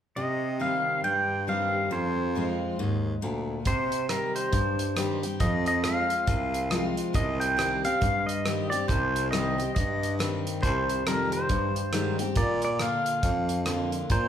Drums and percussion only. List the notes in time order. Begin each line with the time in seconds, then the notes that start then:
3.65 kick, closed hi-hat
3.92 closed hi-hat
4.09 cross-stick, closed hi-hat
4.36 closed hi-hat
4.53 kick, closed hi-hat
4.79 closed hi-hat
4.97 cross-stick, closed hi-hat
5.23 closed hi-hat
5.40 kick, closed hi-hat
5.66 closed hi-hat
5.84 cross-stick, closed hi-hat
6.10 closed hi-hat
6.28 kick, closed hi-hat
6.54 closed hi-hat
6.71 cross-stick, closed hi-hat
6.97 closed hi-hat
7.14 kick, closed hi-hat
7.41 closed hi-hat
7.59 cross-stick, closed hi-hat
7.85 closed hi-hat
8.02 kick, closed hi-hat
8.29 closed hi-hat
8.46 cross-stick, closed hi-hat
8.72 closed hi-hat
8.89 kick, closed hi-hat
9.16 closed hi-hat
9.33 cross-stick, closed hi-hat
9.60 closed hi-hat
9.76 kick, closed hi-hat
10.03 closed hi-hat
10.20 cross-stick, closed hi-hat
10.47 closed hi-hat
10.63 kick, closed hi-hat
10.89 closed hi-hat
11.07 cross-stick, closed hi-hat
11.32 closed hi-hat
11.49 kick, closed hi-hat
11.76 closed hi-hat
11.93 cross-stick, closed hi-hat
12.19 closed hi-hat
12.36 kick, closed hi-hat
12.62 closed hi-hat
12.79 cross-stick, closed hi-hat
13.06 closed hi-hat
13.23 kick, closed hi-hat
13.49 closed hi-hat
13.66 cross-stick, closed hi-hat
13.92 closed hi-hat
14.10 kick, closed hi-hat